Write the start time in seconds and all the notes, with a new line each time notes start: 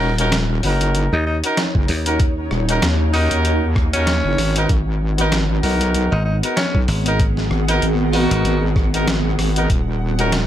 Already playing: D#1 C#4 D#4 F#4 A#4
0.18 C#4 D#4 F#4 A#4 C#5, closed hi-hat
0.32 snare, closed hi-hat
0.63 F#1 C#4 D#4 F#4 A#4, open hi-hat
0.81 closed hi-hat
0.95 closed hi-hat
1.13 D#2 D#4
1.26 D#4
1.43 C#4 D#4 F#4 A#4, closed hi-hat
1.50 F#5
1.57 snare, closed hi-hat
1.75 F#1, kick
1.88 D#2, open hi-hat
2.06 C#4 D#4 F#4 A#4, closed hi-hat
2.20 kick, closed hi-hat
2.51 D#1, cross-stick
2.68 C#4 D#4 F#4 A#4, closed hi-hat
2.82 D#2, snare, closed hi-hat
3.13 C#4 D#4 F#4 A#4, open hi-hat
3.31 D#2, closed hi-hat
3.45 closed hi-hat
3.76 kick, cross-stick
3.93 C#4 D#4 F#4 A#4, closed hi-hat
4.07 snare, closed hi-hat
4.25 F#1
4.38 G#1, cross-stick, open hi-hat
4.56 C#4 D#4 F#4 A#4, closed hi-hat
4.69 G#1 B3, kick, closed hi-hat
5.08 G#4
5.18 B3 D#4 F#4 A#4, closed hi-hat
5.32 snare, closed hi-hat
5.63 B1 B3 D#4 F#4 A#4, open hi-hat
5.81 closed hi-hat
5.94 closed hi-hat
6.12 G#1 D#4
6.25 D#4
6.43 B3 D#4 F#4 A#4, closed hi-hat
6.56 C#4, snare, closed hi-hat
6.75 B1, kick
6.88 G#1, open hi-hat
7.06 B3 D#4 F#4 A#4, closed hi-hat
7.20 kick, closed hi-hat
7.37 snare
7.51 G#1, cross-stick
7.68 B3 D#4 F#4 A#4, closed hi-hat
7.82 G#1, closed hi-hat
8.13 B3 D#4 F#4 A#4, open hi-hat
8.31 G#1, closed hi-hat
8.45 G#1, closed hi-hat
8.76 kick, cross-stick
8.93 B3 D#4 F#4 A#4, closed hi-hat
9.07 snare, closed hi-hat
9.38 G#1, cross-stick, open hi-hat
9.56 B3 D#4 F#4 A#4, closed hi-hat
9.70 D#1 D#4, kick, closed hi-hat
10.18 C#4 D#4 F#4 A#4, closed hi-hat
10.32 snare, closed hi-hat